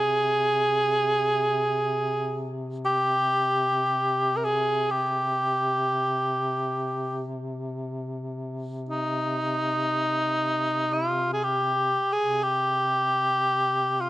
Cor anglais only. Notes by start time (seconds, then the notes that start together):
Already playing: G#4
2.85 G4
4.37 A#4
4.45 G#4
4.91 G4
8.89 D#4
10.93 F4
11.33 G#4
11.43 G4
12.13 G#4
12.43 G4
14.01 F4